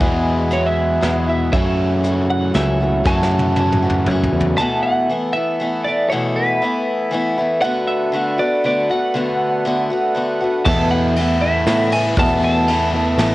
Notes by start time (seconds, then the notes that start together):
Already playing: E3 E4 G#4 F#5 G#5
0.00 E2 B2 E3 F#3 G#3 B3 E4 G#4, kick, closed hi-hat
0.51 F#3 G#3 B3 E4 C#5, closed hi-hat
0.66 E5
1.01 E2 F#3 G#3 B3 E4, snare, closed hi-hat
1.28 F#3 G#3 B3 E4 E5
1.53 F#2 C#3 E3 F#3 A3 C#4 F#4 A4 E5, kick, closed hi-hat
2.04 E3 A3 C#4 F#4, closed hi-hat
2.30 F#5
2.54 C#2 E3 A3 C#4 F#4 E5, snare, closed hi-hat
2.80 E3 A3 C#4 F#4
3.05 F#2 C#3 E3 F#3 A3 C#4 F#4 A5, kick, snare
3.23 snare
3.39 high tom
3.56 E3 A3 C#4 F#4, high tom
3.72 mid tom
3.83 E3 A3 C#4 F#4
3.90 mid tom
4.06 F#2 E3 A3 C#4, mid tom
4.11 F#4
4.24 floor tom
4.33 E2
4.41 floor tom
4.58 E2 B2 E3 A3 B3 E4 A4 E5 A5
4.83 F#5
5.09 E3 A3 B3 E4
5.33 A3 B3 E4 E5
5.37 E3
5.60 E3 A3 B3 E4
5.84 A3 B3 E4 D5
5.89 E3
6.10 E2 B2 E3 A3 B3 E4 C#5
6.36 B4
6.62 E3 A3 B3 E4
7.11 E3 A3 B3 E4
7.38 E3 A3 B3 E4
7.61 D3 A3 B3 D4 F#4 B4 F#5
7.87 E5
8.12 D3 A3 B3 F#4
8.38 A3 B3 F#4 D5
8.64 D3 A3 B3 F#4 D5
8.90 A3 B3 F#4 F#5
9.14 D3 A3 B3 F#4
9.65 D3 A3 B3 F#4
9.90 A3 B3 F#4
10.15 D3 A3 B3 F#4
10.41 A3 B3 F#4
10.65 E2 B2 E3 A3 B3 E4 E5 A5, kick, crash
10.91 A3 B3 E4 F#5
11.16 E3 A3 B3 E4, ride
11.41 E3 A3 B3 E4 E5
11.67 A2 E3 A3 B3 E4, snare, ride
11.92 A3 B3 E4 G#5, ride
11.96 E3
12.17 E2 B2 E3 A3 B3 E4 A5, kick, ride
12.42 A3 B3 E4 A5
12.68 E3 A3 B3 E4, ride
12.94 E3 A3 B3 E4
13.18 A1 E3 A3 B3 E4, snare, ride